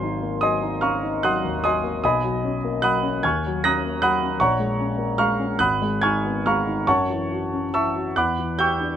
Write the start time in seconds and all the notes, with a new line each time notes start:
Already playing: G#1 F#3 C5 F5 G#5 C6
0.03 D#4
0.22 A#3
0.41 F#3 D#5 G#5 C6 D#6
0.62 D#4
0.81 C#4 F5 A#5 C#6 F6
1.02 D#4
1.23 F#3 F#5 C6 D#6 F#6
1.44 D#2
1.64 F#3 D#5 G#5 C6 D#6
1.84 A#3
2.04 B1 D#5 G#5 B5 D#6
2.24 F#3
2.44 C#4
2.65 A#3
2.82 F#3 F#5 B5 D#6 F#6
3.03 C#4
3.23 D#2 G#5 C#6 F6 G#6
3.47 F#3
3.64 C#4 A#5 D#6 F#6 A#6
3.86 A#3
4.02 F#3 F#5 B5 D#6 F#6
4.22 C#4
4.40 A#1 C#5 F#5 A#5 C#6
4.59 G#3
4.80 C#4
4.98 A#3
5.18 G#3 F5 A#5 C#6 F6
5.40 C#4
5.59 G#1 F#5 B5 D#6 F#6
5.82 G#3
6.01 D#4 G#5 C#6 F6 G#6
6.25 B3
6.46 G#3 F5 A#5 C#6 F6
6.67 D#4
6.87 F#2 C#5 F#5 A5 C#6
7.10 E3
7.32 F#4
7.54 C#4
7.74 E3 E5 A5 C#6 E6
7.95 F#4
8.16 E2 F#5 B5 D6 F#6
8.38 E3
8.59 G4 G5 C#6 E6 G6
8.80 D4